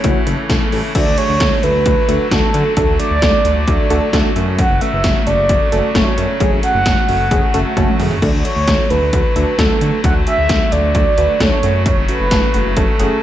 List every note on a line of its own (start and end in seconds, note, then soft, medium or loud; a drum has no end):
0.00 0.93 C#3 medium
0.00 0.93 E3 medium
0.00 0.93 A3 medium
0.00 0.93 E4 medium
0.00 0.50 C#5 loud
0.00 closed hi-hat medium
0.04 0.14 F#1 loud
0.04 0.22 A3 loud
0.04 0.22 C#4 loud
0.04 0.22 E4 loud
0.04 0.22 F#4 loud
0.04 kick loud
0.27 0.36 F#1 loud
0.27 0.45 A3 medium
0.27 0.45 C#4 medium
0.27 0.45 E4 medium
0.27 0.45 A4 loud
0.27 closed hi-hat medium
0.50 0.59 E1 medium
0.50 0.68 A3 medium
0.50 0.68 C#4 medium
0.50 0.68 E4 medium
0.50 0.68 A4 loud
0.50 kick loud
0.50 snare loud
0.50 closed hi-hat medium
0.72 0.82 A1 medium
0.72 0.90 A3 medium
0.72 0.90 C#4 medium
0.72 0.90 E4 medium
0.72 0.90 A4 loud
0.72 open hi-hat medium
0.95 1.05 D2 loud
0.95 4.33 D3 medium
0.95 8.18 F#3 medium
0.95 1.13 A3 medium
0.95 13.23 A3 medium
0.95 1.13 D4 medium
0.95 11.59 F#4 medium
0.95 1.13 F#4 medium
0.95 1.13 A4 loud
0.95 1.19 D5 loud
0.95 kick loud
0.95 closed hi-hat medium
0.95 crash loud
1.06 1.16 D2 loud
1.18 1.36 A3 medium
1.18 1.36 D4 medium
1.18 1.36 F#4 medium
1.18 1.36 G#4 medium
1.18 1.63 C#5 loud
1.18 closed hi-hat medium
1.29 1.39 D2 medium
1.40 1.50 D2 loud
1.40 1.59 A3 medium
1.40 1.59 D4 medium
1.40 1.59 F#4 medium
1.40 1.59 A4 medium
1.40 kick loud
1.40 snare loud
1.40 closed hi-hat medium
1.63 1.73 D2 loud
1.63 1.81 A3 medium
1.63 1.81 D4 medium
1.63 1.81 F#4 medium
1.63 1.81 A4 medium
1.63 2.27 B4 loud
1.63 closed hi-hat medium
1.75 1.84 D2 loud
1.86 1.95 D2 loud
1.86 2.04 A3 medium
1.86 2.04 D4 medium
1.86 2.04 F#4 medium
1.86 2.04 A4 medium
1.86 kick loud
1.86 closed hi-hat medium
2.09 2.18 D2 medium
2.09 2.27 A3 medium
2.09 2.27 D4 medium
2.09 2.27 F#4 medium
2.09 2.27 A4 loud
2.09 closed hi-hat medium
2.31 2.41 D2 loud
2.31 2.50 A3 loud
2.31 2.50 D4 medium
2.31 2.50 F#4 medium
2.31 2.74 A4 loud
2.31 2.50 A4 loud
2.31 kick loud
2.31 snare loud
2.31 closed hi-hat medium
2.54 2.64 D3 loud
2.54 2.72 A3 medium
2.54 2.72 D4 medium
2.54 2.72 F#4 medium
2.54 2.72 A4 medium
2.54 closed hi-hat medium
2.77 2.86 D2 loud
2.77 2.95 A3 medium
2.77 2.95 D4 medium
2.77 2.95 F#4 medium
2.77 2.98 A4 medium
2.77 2.95 A4 loud
2.77 kick loud
2.77 closed hi-hat medium
2.88 2.98 D2 loud
3.00 3.18 A3 medium
3.00 3.18 D4 medium
3.00 3.18 F#4 medium
3.00 3.18 A4 medium
3.00 4.32 D5 loud
3.00 closed hi-hat medium
3.11 3.20 D2 loud
3.22 3.32 D2 loud
3.22 3.40 A3 medium
3.22 3.40 D4 medium
3.22 3.40 F#4 medium
3.22 3.40 A4 medium
3.22 kick loud
3.22 snare loud
3.22 closed hi-hat medium
3.45 3.55 D2 loud
3.45 3.63 A3 medium
3.45 3.63 D4 medium
3.45 3.63 F#4 medium
3.45 3.63 A4 medium
3.45 closed hi-hat medium
3.56 3.66 D2 loud
3.68 3.77 D2 loud
3.68 3.86 A3 medium
3.68 3.86 D4 medium
3.68 3.86 F#4 medium
3.68 3.86 A4 loud
3.68 kick loud
3.68 closed hi-hat medium
3.90 4.00 D2 loud
3.90 4.09 A3 loud
3.90 4.09 D4 loud
3.90 4.09 F#4 loud
3.90 4.09 A4 loud
3.90 closed hi-hat medium
4.13 4.23 D2 loud
4.13 4.31 A3 loud
4.13 4.31 D4 loud
4.13 4.31 F#4 loud
4.13 4.31 A4 loud
4.13 kick loud
4.13 snare loud
4.13 closed hi-hat medium
4.36 4.65 F#2 loud
4.36 8.18 C#3 medium
4.36 4.72 A3 loud
4.36 4.72 C#4 medium
4.36 4.72 F#4 medium
4.36 4.72 A4 loud
4.36 closed hi-hat medium
4.59 4.74 F#5 loud
4.59 kick loud
4.59 closed hi-hat medium
4.70 4.80 F#1 loud
4.74 4.83 F#5 medium
4.81 5.00 A3 medium
4.81 5.00 C#4 medium
4.81 5.00 F#4 medium
4.81 5.00 B4 medium
4.81 5.26 E5 loud
4.81 closed hi-hat medium
4.93 5.02 F#1 loud
5.04 5.14 F#1 loud
5.04 5.22 A3 medium
5.04 5.22 C#4 medium
5.04 5.22 F#4 medium
5.04 5.22 A4 medium
5.04 kick loud
5.04 snare loud
5.04 closed hi-hat medium
5.27 5.36 F#1 loud
5.27 5.45 A3 medium
5.27 5.45 C#4 medium
5.27 5.45 F#4 medium
5.27 5.45 A4 medium
5.27 5.97 D5 loud
5.27 closed hi-hat medium
5.38 5.48 F#1 loud
5.49 5.59 F#1 loud
5.49 5.68 A3 medium
5.49 5.68 C#4 medium
5.49 5.68 F#4 medium
5.49 5.68 A4 medium
5.49 kick loud
5.49 closed hi-hat medium
5.72 5.82 F#1 loud
5.72 5.90 A3 loud
5.72 5.90 C#4 medium
5.72 5.90 F#4 medium
5.72 5.90 A4 loud
5.72 closed hi-hat medium
5.95 6.05 F#1 loud
5.95 6.13 A3 loud
5.95 6.13 C#4 medium
5.95 6.13 F#4 medium
5.95 6.13 A4 loud
5.95 6.40 C#5 medium
5.95 kick loud
5.95 snare loud
5.95 closed hi-hat medium
6.18 6.27 F#2 loud
6.18 6.36 A3 medium
6.18 6.36 C#4 medium
6.18 6.36 F#4 medium
6.18 6.36 A4 medium
6.18 closed hi-hat medium
6.40 6.50 F#1 loud
6.40 6.59 A3 loud
6.40 6.59 C#4 medium
6.40 6.59 F#4 medium
6.40 6.59 G#4 loud
6.40 6.51 C#5 medium
6.40 kick loud
6.40 closed hi-hat medium
6.52 6.61 F#1 loud
6.63 6.81 A3 medium
6.63 6.81 C#4 medium
6.63 6.81 F#4 medium
6.63 6.81 A4 medium
6.63 7.95 F#5 loud
6.63 closed hi-hat medium
6.74 6.84 F#1 loud
6.86 6.96 F#1 loud
6.86 7.04 A3 medium
6.86 7.04 C#4 medium
6.86 7.04 F#4 medium
6.86 7.04 A4 medium
6.86 kick loud
6.86 snare loud
6.86 closed hi-hat medium
7.08 7.18 F#1 loud
7.08 7.27 A3 medium
7.08 7.27 C#4 medium
7.08 7.27 F#4 medium
7.08 7.27 A4 medium
7.08 open hi-hat medium
7.20 7.29 F#1 loud
7.31 7.41 F#1 loud
7.31 7.50 A3 medium
7.31 7.50 C#4 medium
7.31 7.50 F#4 medium
7.31 7.50 G#4 loud
7.31 kick loud
7.31 closed hi-hat medium
7.54 7.64 F#1 loud
7.54 7.72 A3 loud
7.54 7.72 C#4 loud
7.54 7.72 F#4 loud
7.54 7.72 A4 loud
7.54 closed hi-hat medium
7.77 7.86 F#1 loud
7.77 7.95 A3 loud
7.77 7.95 C#4 loud
7.77 7.95 F#4 loud
7.77 7.95 A4 loud
7.77 kick loud
7.77 closed hi-hat medium
7.77 high tom medium
7.88 mid tom medium
7.99 8.09 F#2 loud
7.99 8.18 A3 medium
7.99 8.18 C#4 medium
7.99 8.18 F#4 medium
7.99 8.18 G#4 loud
7.99 mid tom loud
7.99 open hi-hat medium
8.11 floor tom medium
8.22 8.32 D2 loud
8.22 11.60 D3 medium
8.22 13.23 F#3 medium
8.22 8.40 A3 loud
8.22 8.40 D4 medium
8.22 8.40 F#4 medium
8.22 8.40 A4 loud
8.22 8.29 D5 loud
8.22 kick loud
8.22 crash medium
8.34 8.43 D2 loud
8.38 8.46 D5 medium
8.45 8.63 A3 medium
8.45 8.63 D4 medium
8.45 8.63 F#4 medium
8.45 8.63 A4 medium
8.45 8.92 C#5 loud
8.45 closed hi-hat medium
8.56 8.66 D2 medium
8.68 8.77 D2 loud
8.68 8.86 A3 medium
8.68 8.86 D4 medium
8.68 8.86 F#4 medium
8.68 8.86 A4 medium
8.68 kick loud
8.68 snare loud
8.68 closed hi-hat medium
8.90 9.00 D2 loud
8.90 9.09 A3 medium
8.90 9.09 D4 medium
8.90 9.09 F#4 medium
8.90 9.09 A4 medium
8.90 9.58 B4 loud
8.90 closed hi-hat medium
9.02 9.11 D2 loud
9.13 9.23 D2 loud
9.13 9.31 A3 medium
9.13 9.31 D4 medium
9.13 9.31 F#4 medium
9.13 9.31 A4 medium
9.13 kick loud
9.13 closed hi-hat medium
9.36 9.45 D2 medium
9.36 9.54 A3 loud
9.36 9.54 D4 medium
9.36 9.54 F#4 medium
9.36 9.54 A4 loud
9.36 closed hi-hat medium
9.59 9.68 D2 loud
9.59 9.77 A3 loud
9.59 9.77 D4 medium
9.59 9.77 F#4 medium
9.59 10.01 A4 loud
9.59 9.77 A4 loud
9.59 kick loud
9.59 snare loud
9.59 closed hi-hat medium
9.81 9.91 D3 loud
9.81 10.00 A3 medium
9.81 10.00 D4 medium
9.81 10.00 F#4 medium
9.81 10.00 A4 medium
9.81 closed hi-hat medium
10.04 10.14 D2 loud
10.04 10.22 A3 medium
10.04 10.22 D4 medium
10.04 10.22 F#4 medium
10.04 10.22 A4 loud
10.04 10.14 F#5 loud
10.04 kick loud
10.04 closed hi-hat medium
10.15 10.25 D2 loud
10.27 10.45 A3 medium
10.27 10.45 D4 medium
10.27 10.45 F#4 medium
10.27 10.45 G#4 medium
10.27 10.74 E5 loud
10.27 closed hi-hat medium
10.38 10.48 D2 medium
10.49 10.59 D2 loud
10.49 10.68 A3 medium
10.49 10.68 D4 medium
10.49 10.68 F#4 medium
10.49 10.68 A4 medium
10.49 kick loud
10.49 snare loud
10.49 closed hi-hat medium
10.72 10.82 D2 loud
10.72 10.90 A3 medium
10.72 10.90 D4 medium
10.72 10.90 F#4 medium
10.72 10.90 A4 medium
10.72 11.40 D5 loud
10.72 closed hi-hat medium
10.84 10.93 D2 loud
10.95 11.05 D2 loud
10.95 11.13 A3 medium
10.95 11.13 D4 medium
10.95 11.13 F#4 medium
10.95 11.13 A4 medium
10.95 kick loud
10.95 closed hi-hat medium
11.18 11.27 D2 loud
11.18 11.36 A3 loud
11.18 11.36 D4 medium
11.18 11.36 F#4 medium
11.18 11.36 B4 loud
11.18 closed hi-hat medium
11.40 11.50 D2 loud
11.40 11.59 A3 loud
11.40 11.59 D4 medium
11.40 11.59 F#4 medium
11.40 11.59 A4 loud
11.40 11.83 C#5 loud
11.40 kick loud
11.40 snare loud
11.40 closed hi-hat medium
11.63 11.92 F#2 loud
11.63 13.23 C#3 medium
11.63 12.00 A3 medium
11.63 12.00 C#4 medium
11.63 12.00 F#4 medium
11.63 13.23 F#4 medium
11.63 12.00 A4 medium
11.63 closed hi-hat medium
11.86 11.96 C#5 loud
11.86 kick loud
11.86 closed hi-hat medium
11.97 12.07 F#1 loud
12.09 12.27 A3 medium
12.09 12.27 C#4 medium
12.09 12.27 F#4 medium
12.09 12.27 A4 medium
12.09 12.78 B4 loud
12.09 closed hi-hat medium
12.20 12.30 F#1 loud
12.31 12.41 F#1 loud
12.31 12.50 A3 medium
12.31 12.50 C#4 medium
12.31 12.50 F#4 medium
12.31 12.50 A4 medium
12.31 kick loud
12.31 snare loud
12.31 closed hi-hat medium
12.54 12.64 F#1 loud
12.54 12.72 A3 medium
12.54 12.72 C#4 medium
12.54 12.72 F#4 medium
12.54 12.72 B4 medium
12.54 closed hi-hat medium
12.65 12.75 F#1 loud
12.77 12.86 F#1 loud
12.77 12.95 A3 medium
12.77 12.95 C#4 medium
12.77 12.95 F#4 medium
12.77 13.23 A4 medium
12.77 12.95 A4 medium
12.77 kick loud
12.77 closed hi-hat medium
13.00 13.09 F#1 loud
13.00 13.18 A3 loud
13.00 13.18 C#4 medium
13.00 13.18 F#4 medium
13.00 13.18 G#4 loud
13.00 closed hi-hat medium